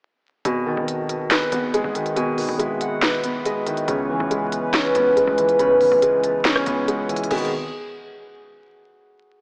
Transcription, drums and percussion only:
0.45 closed hi-hat medium
0.88 closed hi-hat medium
1.09 closed hi-hat medium
1.31 cross-stick medium
1.31 snare loud
1.31 clap medium
1.31 closed hi-hat medium
1.52 closed hi-hat medium
1.74 closed hi-hat medium
1.95 closed hi-hat medium
2.06 closed hi-hat soft
2.17 closed hi-hat medium
2.38 open hi-hat medium
2.60 closed hi-hat medium
2.81 closed hi-hat medium
3.02 cross-stick medium
3.02 snare loud
3.02 clap medium
3.02 closed hi-hat medium
3.24 closed hi-hat medium
3.45 closed hi-hat medium
3.67 closed hi-hat medium
3.77 closed hi-hat soft
3.88 closed hi-hat medium
4.31 closed hi-hat medium
4.52 closed hi-hat medium
4.73 cross-stick medium
4.73 snare loud
4.73 clap medium
4.73 closed hi-hat medium
4.95 closed hi-hat medium
5.17 closed hi-hat medium
5.38 closed hi-hat medium
5.49 closed hi-hat soft
5.59 closed hi-hat medium
5.81 open hi-hat medium
6.02 closed hi-hat medium
6.24 closed hi-hat medium
6.45 snare loud
6.45 clap medium
6.45 closed hi-hat medium
6.56 cross-stick loud
6.66 closed hi-hat medium
6.88 closed hi-hat medium
7.09 closed hi-hat medium
7.16 closed hi-hat medium
7.24 closed hi-hat medium
7.31 closed hi-hat medium
7.31 crash medium
7.38 closed hi-hat soft
7.45 closed hi-hat soft

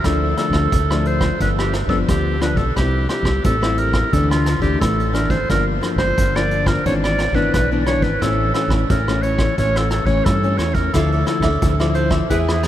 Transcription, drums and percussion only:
0.04 kick medium
0.04 cross-stick medium
0.04 closed hi-hat medium
0.37 cross-stick medium
0.37 closed hi-hat soft
0.53 kick medium
0.53 cross-stick medium
0.53 closed hi-hat soft
0.72 kick medium
0.72 closed hi-hat medium
0.90 cross-stick medium
1.05 closed hi-hat soft
1.21 kick medium
1.21 cross-stick medium
1.21 closed hi-hat soft
1.40 kick medium
1.40 closed hi-hat medium
1.59 cross-stick medium
1.59 closed hi-hat soft
1.73 cross-stick medium
1.73 closed hi-hat soft
1.89 kick medium
2.09 kick medium
2.09 cross-stick medium
2.09 closed hi-hat medium
2.41 cross-stick medium
2.41 closed hi-hat soft
2.57 kick medium
2.57 closed hi-hat soft
2.76 kick medium
2.76 cross-stick medium
2.76 closed hi-hat medium
3.09 cross-stick medium
3.09 closed hi-hat soft
3.25 kick medium
3.25 cross-stick medium
3.44 kick medium
3.44 closed hi-hat medium
3.63 cross-stick medium
3.78 closed hi-hat soft
3.93 kick medium
3.93 cross-stick medium
3.93 closed hi-hat soft
4.13 kick medium
4.13 closed hi-hat medium
4.31 cross-stick medium
4.31 closed hi-hat soft
4.46 cross-stick medium
4.46 closed hi-hat soft
4.62 kick medium
4.62 closed hi-hat soft
4.81 kick medium
4.81 cross-stick medium
4.81 closed hi-hat medium
5.00 closed hi-hat soft
5.14 cross-stick medium
5.14 closed hi-hat soft
5.30 kick medium
5.30 closed hi-hat soft
5.50 kick medium
5.50 cross-stick medium
5.50 closed hi-hat medium
5.83 cross-stick medium
5.83 closed hi-hat soft
5.98 kick medium
5.98 cross-stick medium
5.98 closed hi-hat soft
6.18 kick medium
6.18 closed hi-hat medium
6.36 cross-stick medium
6.51 closed hi-hat soft
6.66 kick medium
6.66 cross-stick medium
6.66 closed hi-hat soft
6.86 kick medium
6.86 closed hi-hat medium
7.04 cross-stick medium
7.04 closed hi-hat soft
7.19 cross-stick medium
7.19 closed hi-hat soft
7.34 kick medium
7.54 kick medium
7.54 cross-stick medium
7.54 closed hi-hat medium
7.86 cross-stick medium
7.86 closed hi-hat soft
8.02 kick medium
8.02 closed hi-hat soft
8.22 kick medium
8.22 cross-stick medium
8.22 closed hi-hat medium
8.54 cross-stick medium
8.54 closed hi-hat soft
8.70 kick medium
8.70 cross-stick medium
8.90 kick medium
8.90 closed hi-hat medium
9.08 cross-stick medium
9.23 closed hi-hat soft
9.38 kick medium
9.38 cross-stick medium
9.38 closed hi-hat soft
9.58 kick medium
9.58 closed hi-hat medium
9.76 cross-stick medium
9.76 closed hi-hat soft
9.90 cross-stick medium
9.90 closed hi-hat soft
10.06 kick medium
10.06 closed hi-hat soft
10.26 kick medium
10.26 cross-stick medium
10.26 closed hi-hat medium
10.44 closed hi-hat soft
10.59 cross-stick medium
10.59 closed hi-hat soft
10.74 kick medium
10.74 closed hi-hat soft
10.94 kick medium
10.94 cross-stick medium
10.94 closed hi-hat medium
11.27 cross-stick medium
11.27 closed hi-hat soft
11.42 kick medium
11.42 cross-stick medium
11.42 closed hi-hat soft
11.62 kick medium
11.62 closed hi-hat medium
11.80 cross-stick medium
11.95 closed hi-hat soft
12.11 kick medium
12.11 cross-stick medium
12.11 closed hi-hat soft
12.30 kick medium
12.30 closed hi-hat medium
12.48 cross-stick medium
12.48 closed hi-hat soft
12.63 cross-stick medium
12.63 closed hi-hat soft

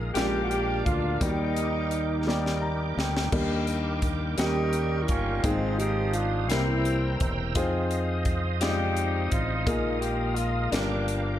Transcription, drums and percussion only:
0.15 snare medium
0.15 closed hi-hat medium
0.51 closed hi-hat soft
0.86 kick medium
0.86 closed hi-hat soft
1.21 kick medium
1.21 closed hi-hat medium
1.56 closed hi-hat soft
1.91 closed hi-hat soft
2.29 snare soft
2.46 snare soft
2.99 snare medium
3.17 snare medium
3.32 kick medium
3.32 crash medium
3.67 closed hi-hat soft
4.02 kick medium
4.02 closed hi-hat soft
4.38 snare medium
4.38 closed hi-hat medium
4.73 closed hi-hat soft
5.08 kick medium
5.08 closed hi-hat soft
5.44 kick loud
5.44 closed hi-hat medium
5.80 closed hi-hat soft
6.14 closed hi-hat soft
6.50 snare medium
6.50 closed hi-hat medium
6.85 closed hi-hat soft
7.20 kick medium
7.20 closed hi-hat medium
7.55 kick medium
7.55 closed hi-hat medium
7.91 closed hi-hat soft
8.25 kick medium
8.25 closed hi-hat soft
8.61 snare medium
8.61 closed hi-hat medium
8.97 closed hi-hat soft
9.32 kick medium
9.32 closed hi-hat medium
9.67 kick loud
9.67 closed hi-hat medium
10.02 closed hi-hat soft
10.36 closed hi-hat soft
10.72 snare medium
10.72 closed hi-hat medium
11.08 closed hi-hat soft

